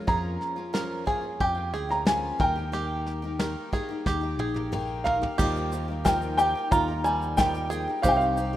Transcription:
Already playing: steel-string acoustic guitar F2 F3 F4
0.07 fingered electric bass F2, twelve-string acoustic guitar F3 A#3 C#4 F4, five-string banjo G#4, upright piano A#5, kick, snare
0.41 snare
0.56 twelve-string acoustic guitar A#3 C#4 F4
0.73 twelve-string acoustic guitar F3 A#3 C#4 F4, five-string banjo A#4, snare
1.06 twelve-string acoustic guitar F3 A#3 C#4 F4, five-string banjo G#4, upright piano G#5, kick, snare
1.21 twelve-string acoustic guitar A#3 C#4 F4
1.40 fingered electric bass F2, five-string banjo G4, upright piano G5, kick, snare
1.55 twelve-string acoustic guitar A#3 C#4 F4
1.73 fingered electric bass D2, five-string banjo G#4, snare
1.89 twelve-string acoustic guitar A#3 C#4 F4, upright piano A#5, snare
2.06 twelve-string acoustic guitar F3 A#3 C#4 F4, upright piano G#5, snare
2.39 fingered electric bass D#2, twelve-string acoustic guitar D#3 A#3 D#4 G4, five-string banjo A#4, upright piano G5, kick, snare
2.56 twelve-string acoustic guitar A#3 D#4 G4
2.72 twelve-string acoustic guitar D#3 A#3 D#4 G4, five-string banjo G4, snare
3.06 snare
3.22 twelve-string acoustic guitar A#3 D#4 G4
3.39 twelve-string acoustic guitar D#3 A#3 D#4 G4, five-string banjo A#4, snare
3.72 twelve-string acoustic guitar D#3 A#3 D#4 G4, five-string banjo G#4, kick, snare
3.89 twelve-string acoustic guitar A#3 D#4 G4
4.06 fingered electric bass D#2, five-string banjo G4, kick, snare
4.21 twelve-string acoustic guitar A#3 D#4 G4
4.39 fingered electric bass A#1, five-string banjo G#4, high tom
4.54 twelve-string acoustic guitar A#3 D#4 G4, high tom
4.72 twelve-string acoustic guitar D#3 A#3 D#4 G4, mid tom
5.04 twelve-string acoustic guitar D#3 A#3 D#4 G4, five-string banjo A#4, upright piano F5, floor tom
5.22 twelve-string acoustic guitar A#3 D#4 G4, floor tom
5.38 grand piano D#2 D#3 G3 D#4 F4 A#4, fingered electric bass D#2, twelve-string acoustic guitar D#3 F3 A#3 D#4 G4, five-string banjo G4, kick, crash, shaker
5.56 shaker
5.72 twelve-string acoustic guitar F3 A#3 D#4 G4, shaker
5.88 twelve-string acoustic guitar A#3 D#4 G4
6.04 twelve-string acoustic guitar D#3 F3 A#3 D#4 G4, grand piano G3 D#4 F4 A#4, five-string banjo A#4, upright piano G5, kick, snare, shaker
6.22 shaker
6.37 twelve-string acoustic guitar F3 A#3 D#4 G4, grand piano G3 D#4 F4 A#4, five-string banjo G4, upright piano G5, shaker
6.55 twelve-string acoustic guitar A#3 D#4 G4
6.71 fingered electric bass D#2, grand piano G3 D#4 F4 G4, five-string banjo F4, upright piano A#5, kick, shaker
6.88 twelve-string acoustic guitar A#3 D#4 G4
7.04 twelve-string acoustic guitar F3 A#3 D#4, five-string banjo G3, upright piano G#5, shaker
7.22 shaker
7.37 twelve-string acoustic guitar D#3 F3 A#3 D#4 G4, grand piano G3 D#4 F4 A#4, upright piano G5, kick, snare, shaker
7.54 twelve-string acoustic guitar A#3 D#4 G4, shaker
7.70 twelve-string acoustic guitar F3 A#3 D#4 G4, five-string banjo G#4, shaker
7.88 twelve-string acoustic guitar A#3 D#4 G4
8.02 fingered electric bass C2, grand piano C2 C3 G3 C4 D#4 C5, twelve-string acoustic guitar C3 D#3 C4 D#4 G4, five-string banjo G4, upright piano F5, kick, shaker
8.08 upright piano G5
8.17 upright piano F5
8.21 shaker
8.37 twelve-string acoustic guitar D#3 C4 D#4 G4, shaker
8.53 twelve-string acoustic guitar G4

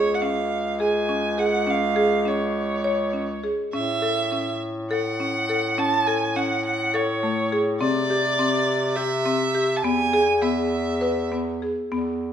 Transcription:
Already playing: bass clarinet C#2, marimba G#4, violin C#5
0.15 violin F#5
0.21 marimba C#4, violin F5
0.80 marimba G#4, violin G#5
1.09 marimba C#4
1.38 marimba G#4, violin F#5
1.67 marimba C#4, violin F5
1.96 marimba G#4
2.25 marimba C#4, violin C#5
2.84 marimba C#5
3.13 marimba C#4
3.44 marimba G#4
3.73 bass clarinet A2, marimba C#4, violin E5
4.02 marimba A4
4.32 marimba C#4
4.91 marimba A4, violin F#5
5.20 marimba C#4
5.49 marimba A4
5.78 marimba C#4, violin A5
6.07 marimba A4, violin G#5
6.36 marimba C#4, violin F#5
6.65 violin F#5
6.94 marimba A4, violin C#5
7.23 marimba A3
7.52 marimba G#4
7.80 bass clarinet C3, marimba C4, violin D5
8.10 marimba G4
8.39 marimba C4
8.96 marimba G4, violin E5
9.26 marimba C4
9.55 marimba G4
9.77 violin A5
9.82 bass clarinet E2, marimba B3, violin G#5
10.13 marimba G#4
10.42 marimba B3, violin E5
11.01 marimba B4
11.32 marimba B3
11.62 marimba G#4
11.92 bass clarinet E2, marimba B3

